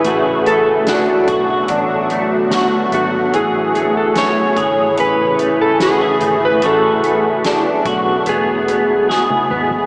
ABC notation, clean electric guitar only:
X:1
M:4/4
L:1/16
Q:1/4=73
K:A
V:1 name="Clean electric guitar"
[A,F]2 A,2 D2 F2 D2 A,2 F2 A,2 | [E,G]2 A,2 C2 G2 C2 A,2 F G A,2 | [A,F]2 A,2 D2 F2 B,2 B,2 G2 B,2 |]